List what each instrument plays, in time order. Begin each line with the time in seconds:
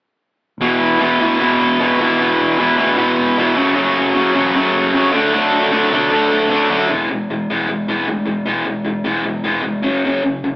0.58 picked electric bass E1, distorted electric guitar E2 E3 G#3 B3
0.62 distorted electric guitar B2 E4
0.79 picked electric bass E1
0.99 picked electric bass E1, distorted electric guitar E2 B2 E3 G#3 B3 E4
1.18 picked electric bass D2, distorted electric guitar E2 B2 E3 G#3 B3
1.22 distorted electric guitar E4
1.37 picked electric bass E1, distorted electric guitar E2 B2 E3 G#3
1.41 distorted electric guitar B3 E4
1.60 picked electric bass E1
1.78 picked electric bass E1, distorted electric guitar E2 B2 E3 G#3 B3 E4
1.98 picked electric bass G#1, distorted electric guitar E2 B2 E3 G#3 B3 E4
2.18 picked electric bass E1, distorted electric guitar E2 B2 E3 G#3 B3 E4
2.39 picked electric bass E1
2.58 picked electric bass E1, distorted electric guitar E2 B2 E3 G#3 B3 E4
2.77 picked electric bass D2, distorted electric guitar E2 B2 E3 G#3 B3 E4
2.97 picked electric bass E1, distorted electric guitar E2 B2 E3 G#3 B3 E4
3.18 picked electric bass E1
3.37 picked electric bass E1, distorted electric guitar E2 B2 E3 G#3 B3 E4
3.56 picked electric bass F#1, distorted electric guitar F#2 C#3 F#3 A3 C#4
3.75 picked electric bass F#1, distorted electric guitar F#2 C#3 F#3 A3 C#4
3.95 picked electric bass F#1
4.14 picked electric bass F#1, distorted electric guitar F#2 C#3 F#3 A3 C#4
4.34 picked electric bass E1, distorted electric guitar F#2 C#3 F#3 A3 C#4
4.55 picked electric bass F#1, distorted electric guitar F#2 C#3 F#3 A3 C#4
4.74 picked electric bass F#1
4.93 picked electric bass F#1, distorted electric guitar F#2 C#3 F#3 A3 C#4
5.13 picked electric bass D2, distorted electric guitar D3 F#3 A3 D4
5.33 picked electric bass D2, distorted electric guitar D3 F#3 A3 D4
5.53 picked electric bass D2
5.71 picked electric bass D2, distorted electric guitar D3 F#3 A3 D4
5.91 picked electric bass B1, distorted electric guitar D3 F#3 A3 D4
6.11 picked electric bass D2, distorted electric guitar D3 F#3 A3 D4
6.31 picked electric bass D2
6.49 picked electric bass D2, distorted electric guitar D3 F#3 A3 D4
6.70 picked electric bass F#2, distorted electric guitar D3 F#3 A3 D4
6.89 picked electric bass E1, distorted electric guitar E3 G#3 B3
7.10 picked electric bass E1, distorted electric guitar E3 G#3
7.30 picked electric bass E1, distorted electric guitar E3 G#3
7.50 picked electric bass E1, distorted electric guitar E3 G#3 B3
7.69 picked electric bass E1, distorted electric guitar E3 G#3
7.87 picked electric bass E1, distorted electric guitar E3 G#3 B3
8.07 picked electric bass D2, distorted electric guitar E3 G#3
8.26 picked electric bass E1, distorted electric guitar E3 G#3
8.46 picked electric bass E1, distorted electric guitar E3 G#3 B3
8.66 picked electric bass E1, distorted electric guitar E3 G#3
8.85 picked electric bass E1, distorted electric guitar E3 G#3
9.04 picked electric bass E1, distorted electric guitar E3 G#3 B3
9.25 picked electric bass B1, distorted electric guitar E3 G#3
9.44 picked electric bass E1, distorted electric guitar E3 G#3 B3
9.62 picked electric bass F1, distorted electric guitar E3 G#3
9.82 picked electric bass F#1, distorted electric guitar F#2 C#3 F#3
10.03 picked electric bass F#1, distorted electric guitar F#2 C#3 F#3
10.23 picked electric bass F#1, distorted electric guitar F#2 C#3
10.43 picked electric bass F#1, distorted electric guitar F#2 C#3